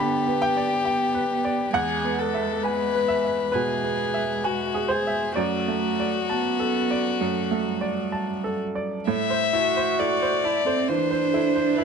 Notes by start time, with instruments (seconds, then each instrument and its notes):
Already playing: upright piano G2 B3 B4 D5 G5 A5, violin G4
0.00 upright piano D3 B5, cello B3
0.27 upright piano B3
0.42 cello B3, upright piano G5
0.57 upright piano D5
0.85 cello B3, upright piano G5
1.14 upright piano B4
1.33 cello B3
1.45 upright piano D5
1.73 upright piano E2 F#5, cello G#3, violin G#4
2.04 upright piano B3
2.19 violin A4
2.34 upright piano E5
2.64 violin B4, upright piano G#5
2.95 upright piano B4
3.08 upright piano E5
3.24 upright piano E5
3.52 upright piano B2 B4, cello G#3, violin G#4
3.84 upright piano B3
4.14 upright piano E5
4.44 violin F#4, upright piano G#5
4.74 upright piano G#4
4.88 violin G#4, upright piano C5
5.07 upright piano E5
5.36 upright piano F#2 D5, cello A3, violin F#4
5.68 upright piano A3
6.00 upright piano D5
6.28 cello B3, upright piano A5
6.60 upright piano A4
6.91 upright piano D5
7.20 upright piano F#2, cello A3
7.51 upright piano A3
7.67 cello G3
7.81 upright piano D5
8.12 upright piano A5
8.44 upright piano A4
8.75 upright piano D5
9.07 upright piano A2, synth pluck A4, violin E5
9.30 upright piano C5, synth pluck E5
9.53 upright piano E4, cello F#4, synth pluck A5
9.77 upright piano C5, synth pluck C5
9.99 upright piano E4, synth pluck A4, violin D5
10.22 upright piano C5, synth pluck E5
10.44 cello E4, upright piano D5, synth pluck A5
10.66 cello C4, synth pluck A4, upright piano C5
10.88 upright piano E3, cello D4, violin C5
11.11 synth pluck C5, upright piano C5
11.33 upright piano E4, synth pluck A4
11.55 upright piano C5, synth pluck C5
11.77 upright piano E4, violin B4, synth pluck A5